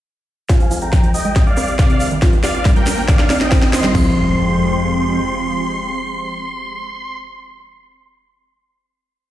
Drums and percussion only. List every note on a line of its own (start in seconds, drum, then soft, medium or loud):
0.49 kick loud
0.49 snare soft
0.49 closed hi-hat medium
0.49 shaker soft
0.60 closed hi-hat soft
0.60 shaker soft
0.71 open hi-hat loud
0.71 shaker medium
0.81 closed hi-hat medium
0.81 shaker soft
0.93 kick loud
0.93 snare soft
0.93 closed hi-hat medium
0.93 shaker medium
1.03 closed hi-hat soft
1.03 shaker soft
1.14 open hi-hat loud
1.14 shaker medium
1.25 closed hi-hat medium
1.25 shaker soft
1.35 kick loud
1.35 snare medium
1.35 closed hi-hat medium
1.35 shaker soft
1.46 shaker soft
1.57 cross-stick medium
1.57 open hi-hat loud
1.57 shaker medium
1.68 closed hi-hat medium
1.68 shaker soft
1.79 kick loud
1.79 snare medium
1.79 closed hi-hat medium
1.79 shaker medium
1.90 closed hi-hat soft
1.90 shaker soft
2.00 open hi-hat loud
2.00 shaker medium
2.11 closed hi-hat medium
2.11 shaker soft
2.22 kick loud
2.22 snare medium
2.22 closed hi-hat medium
2.22 shaker medium
2.33 closed hi-hat soft
2.33 shaker soft
2.44 snare medium
2.44 open hi-hat loud
2.44 shaker medium
2.54 closed hi-hat medium
2.54 shaker soft
2.65 kick loud
2.65 snare medium
2.65 closed hi-hat medium
2.65 shaker soft
2.76 closed hi-hat soft
2.76 shaker soft
2.86 snare medium
2.86 open hi-hat loud
2.86 shaker loud
2.98 closed hi-hat medium
2.98 shaker soft
3.08 kick loud
3.08 snare medium
3.08 closed hi-hat medium
3.08 shaker medium
3.19 snare medium
3.30 snare medium
3.30 open hi-hat loud
3.30 shaker medium
3.41 snare medium
3.41 closed hi-hat medium
3.41 shaker soft
3.51 kick loud
3.51 snare loud
3.51 open hi-hat medium
3.51 shaker medium
3.62 snare medium
3.62 closed hi-hat soft
3.62 shaker soft
3.73 snare loud
3.73 open hi-hat loud
3.73 shaker loud
3.84 snare loud
3.84 closed hi-hat medium
3.84 shaker soft
3.95 kick loud
3.95 floor tom loud
3.95 crash medium